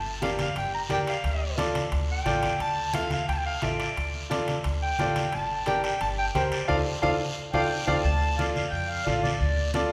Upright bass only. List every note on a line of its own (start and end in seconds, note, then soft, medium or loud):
0.00 0.43 G1 medium
0.56 0.83 G1 medium
0.90 1.04 D2 medium
1.24 1.79 D2 medium
1.92 2.19 D2 medium
2.25 2.39 A1 medium
2.60 3.14 D2 medium
3.28 3.56 D2 medium
3.62 3.76 A1 medium
3.97 4.51 D2 medium
4.65 4.92 D2 medium
4.99 5.13 A1 medium
5.33 5.87 G1 medium
6.01 6.28 G1 medium
6.35 6.48 D2 medium
6.69 6.82 D2 medium
7.03 7.16 D2 medium
7.53 7.66 D2 medium
7.88 8.00 D2 medium
8.04 8.59 D2 medium
8.72 8.99 F2 medium
9.06 9.34 A1 medium
9.41 9.92 D2 medium